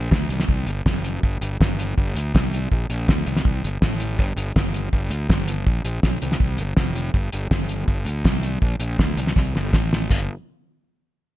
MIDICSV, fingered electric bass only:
0, 0, Header, 1, 2, 480
1, 0, Start_track
1, 0, Tempo, 369686
1, 1588, Time_signature, 4, 2, 24, 8
1, 14755, End_track
2, 0, Start_track
2, 0, Title_t, "Fingered electric bass"
2, 0, Program_c, 0, 33
2, 147, Note_on_c, 0, 38, 81
2, 363, Note_off_c, 0, 38, 0
2, 381, Note_on_c, 0, 36, 77
2, 599, Note_off_c, 0, 36, 0
2, 625, Note_on_c, 0, 36, 82
2, 842, Note_off_c, 0, 36, 0
2, 867, Note_on_c, 0, 31, 78
2, 1083, Note_off_c, 0, 31, 0
2, 1115, Note_on_c, 0, 30, 89
2, 1544, Note_off_c, 0, 30, 0
2, 1597, Note_on_c, 0, 31, 75
2, 1809, Note_off_c, 0, 31, 0
2, 1831, Note_on_c, 0, 31, 80
2, 2046, Note_off_c, 0, 31, 0
2, 2083, Note_on_c, 0, 31, 86
2, 2509, Note_off_c, 0, 31, 0
2, 2566, Note_on_c, 0, 31, 78
2, 2774, Note_off_c, 0, 31, 0
2, 2785, Note_on_c, 0, 38, 83
2, 3003, Note_off_c, 0, 38, 0
2, 3045, Note_on_c, 0, 36, 82
2, 3470, Note_off_c, 0, 36, 0
2, 3527, Note_on_c, 0, 34, 82
2, 3735, Note_off_c, 0, 34, 0
2, 3758, Note_on_c, 0, 34, 72
2, 3970, Note_off_c, 0, 34, 0
2, 4008, Note_on_c, 0, 38, 83
2, 4216, Note_off_c, 0, 38, 0
2, 4236, Note_on_c, 0, 36, 84
2, 4450, Note_off_c, 0, 36, 0
2, 4479, Note_on_c, 0, 36, 79
2, 4691, Note_off_c, 0, 36, 0
2, 4714, Note_on_c, 0, 31, 84
2, 4928, Note_off_c, 0, 31, 0
2, 4960, Note_on_c, 0, 33, 80
2, 5442, Note_off_c, 0, 33, 0
2, 5442, Note_on_c, 0, 31, 83
2, 5653, Note_off_c, 0, 31, 0
2, 5663, Note_on_c, 0, 31, 76
2, 5883, Note_off_c, 0, 31, 0
2, 5918, Note_on_c, 0, 31, 82
2, 6347, Note_off_c, 0, 31, 0
2, 6394, Note_on_c, 0, 31, 78
2, 6604, Note_off_c, 0, 31, 0
2, 6612, Note_on_c, 0, 38, 81
2, 6836, Note_off_c, 0, 38, 0
2, 6875, Note_on_c, 0, 31, 82
2, 7305, Note_off_c, 0, 31, 0
2, 7357, Note_on_c, 0, 34, 80
2, 7570, Note_off_c, 0, 34, 0
2, 7587, Note_on_c, 0, 34, 78
2, 7804, Note_off_c, 0, 34, 0
2, 7835, Note_on_c, 0, 35, 78
2, 8049, Note_off_c, 0, 35, 0
2, 8076, Note_on_c, 0, 36, 80
2, 8289, Note_off_c, 0, 36, 0
2, 8311, Note_on_c, 0, 36, 77
2, 8527, Note_off_c, 0, 36, 0
2, 8555, Note_on_c, 0, 31, 82
2, 8769, Note_off_c, 0, 31, 0
2, 8789, Note_on_c, 0, 29, 90
2, 9221, Note_off_c, 0, 29, 0
2, 9270, Note_on_c, 0, 31, 85
2, 9486, Note_off_c, 0, 31, 0
2, 9518, Note_on_c, 0, 31, 77
2, 9730, Note_off_c, 0, 31, 0
2, 9751, Note_on_c, 0, 31, 88
2, 10182, Note_off_c, 0, 31, 0
2, 10228, Note_on_c, 0, 31, 80
2, 10444, Note_off_c, 0, 31, 0
2, 10454, Note_on_c, 0, 38, 83
2, 10677, Note_off_c, 0, 38, 0
2, 10705, Note_on_c, 0, 36, 91
2, 11139, Note_off_c, 0, 36, 0
2, 11190, Note_on_c, 0, 34, 82
2, 11405, Note_off_c, 0, 34, 0
2, 11417, Note_on_c, 0, 34, 79
2, 11638, Note_off_c, 0, 34, 0
2, 11671, Note_on_c, 0, 38, 85
2, 11886, Note_off_c, 0, 38, 0
2, 11909, Note_on_c, 0, 36, 77
2, 12125, Note_off_c, 0, 36, 0
2, 12156, Note_on_c, 0, 36, 84
2, 12368, Note_off_c, 0, 36, 0
2, 12398, Note_on_c, 0, 31, 86
2, 12610, Note_off_c, 0, 31, 0
2, 12632, Note_on_c, 0, 33, 89
2, 13062, Note_off_c, 0, 33, 0
2, 13118, Note_on_c, 0, 31, 85
2, 13337, Note_off_c, 0, 31, 0
2, 14755, End_track
0, 0, End_of_file